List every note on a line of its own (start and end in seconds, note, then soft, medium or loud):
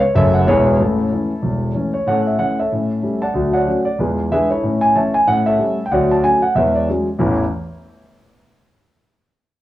0.01 0.14 C#5 medium
0.15 0.42 F#1 medium
0.15 0.42 F#2 medium
0.15 0.33 C#3 soft
0.15 0.33 F#3 soft
0.15 0.34 A3 soft
0.15 0.34 A4 medium
0.15 0.33 C#5 medium
0.15 0.34 E5 loud
0.34 0.47 F#5 medium
0.47 0.74 E1 medium
0.47 0.74 E2 medium
0.47 0.65 E3 soft
0.47 0.65 G#3 medium
0.47 0.66 B3 medium
0.47 0.65 E4 medium
0.47 0.66 G#4 medium
0.47 0.66 C#5 loud
0.67 0.80 B4 medium
0.79 1.06 A1 medium
0.79 1.06 A2 medium
0.79 1.12 C#4 medium
0.79 1.91 E4 medium
0.79 1.94 A4 medium
1.12 1.29 E3 soft
1.12 1.30 A3 soft
1.12 1.30 C#4 soft
1.42 1.70 E1 medium
1.42 1.70 E2 medium
1.75 1.92 E3 soft
1.75 1.92 A3 soft
1.75 1.92 C#4 medium
1.94 2.07 C#5 medium
2.07 2.34 A2 medium
2.07 2.26 C#4 soft
2.07 2.25 A4 medium
2.07 2.25 C#5 medium
2.07 2.26 F#5 medium
2.27 2.39 E5 medium
2.39 2.56 E3 soft
2.39 2.57 A3 soft
2.39 2.57 C#4 soft
2.39 2.58 F#5 medium
2.59 3.19 A4 medium
2.59 3.19 C#5 medium
2.59 3.22 E5 medium
2.72 2.99 A2 medium
2.72 2.90 C#4 soft
3.03 3.21 G3 soft
3.03 3.21 A3 soft
3.03 3.21 C#4 soft
3.22 3.52 D5 medium
3.22 3.52 F#5 medium
3.22 3.54 A5 medium
3.34 3.61 D2 medium
3.34 3.53 F#3 medium
3.53 3.84 C#5 medium
3.53 3.84 D5 medium
3.53 3.85 F#5 medium
3.67 3.85 F#3 soft
3.67 3.85 A3 soft
3.67 3.85 C#4 medium
3.85 3.98 D5 medium
3.99 4.26 E2 medium
3.99 4.18 G#3 soft
3.99 4.29 F4 medium
3.99 4.29 G#4 medium
3.99 4.31 B4 medium
4.31 4.49 E3 soft
4.31 4.49 G#3 soft
4.31 4.49 D4 soft
4.31 4.49 G#4 medium
4.31 4.49 B4 medium
4.31 4.50 E5 loud
4.50 4.80 E4 medium
4.50 4.80 A4 medium
4.50 4.82 C#5 medium
4.63 4.90 A2 medium
4.63 4.82 C#4 medium
4.81 4.94 G#5 medium
4.95 5.13 E3 soft
4.95 5.13 A3 soft
4.95 5.14 C#4 medium
4.95 5.13 C#5 medium
4.95 5.13 E5 medium
4.95 5.14 A5 medium
5.14 5.27 G#5 medium
5.27 5.54 A2 medium
5.27 5.46 C#4 medium
5.27 5.46 F#5 loud
5.46 5.82 A4 medium
5.46 5.82 C#5 medium
5.46 5.84 E5 medium
5.59 5.76 G3 medium
5.59 5.77 A3 medium
5.59 5.77 C#4 medium
5.86 5.91 G5 medium
5.91 6.18 D2 medium
5.91 6.10 F#3 medium
5.91 6.09 C#5 medium
5.91 6.09 D5 medium
5.91 6.10 F#5 medium
6.11 6.23 A5 medium
6.23 6.41 F#3 soft
6.23 6.41 A3 soft
6.23 6.41 C#4 soft
6.23 6.42 G#5 medium
6.42 6.55 F#5 medium
6.55 6.82 E2 medium
6.55 6.74 G#3 soft
6.55 6.73 B4 medium
6.55 6.73 C#5 medium
6.55 6.74 E5 medium
6.75 6.87 D5 medium
6.89 7.06 F#3 soft
6.89 7.06 G#3 soft
6.89 7.06 C#4 soft
7.19 7.39 A1 medium
7.19 7.38 E2 medium
7.19 7.39 E3 medium
7.19 7.39 A3 medium
7.19 7.39 C#4 medium
7.19 7.39 E4 medium
7.19 7.39 A4 medium